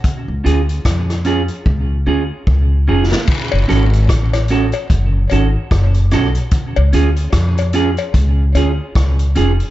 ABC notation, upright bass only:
X:1
M:4/4
L:1/16
Q:"Swing 16ths" 1/4=74
K:F#m
V:1 name="Upright bass" clef=bass
z C,, D,,2 ^E,,3 z C,,2 D,, z C,,2 ^E,,, z | z F,,, G,,,2 A,,,3 z F,,,2 G,,, z F,,,2 B,,, z | z C,, D,,2 ^E,,3 z C,,2 D,, z C,,2 ^E,,, z |]